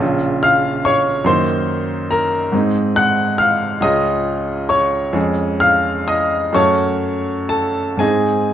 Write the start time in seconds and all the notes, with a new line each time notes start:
0.00 A#1 C#3 C#4 F4
0.43 F5 F6
0.85 C#5 C#6
1.24 F#2 D#3 A#3 D#4 C5 C6
2.11 A#4 A#5
2.52 G#2 G#3 C4 D#4
2.96 F#5 F#6
3.38 F5 F6
3.81 C#2 G#3 C#4 F4 D#5 D#6
4.69 C#5 C#6
5.13 F2 G#3 C#4 G#4
5.60 F5 F6
6.08 D#5 D#6
6.53 F#2 A3 C#4 F#4 C#5 A5 C#6
7.49 A4 A5
7.97 G#2 G#3 C4 D#4 G#4 D#5 G#5